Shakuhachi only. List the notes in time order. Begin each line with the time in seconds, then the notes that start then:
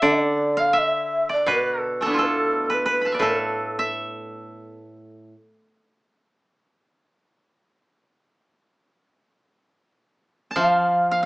0.07 D5
0.59 F5
0.78 E5
1.32 D5
1.52 B4
2.02 A4
2.22 A4 B4
2.73 B4
2.90 B4
3.25 A4
10.57 F5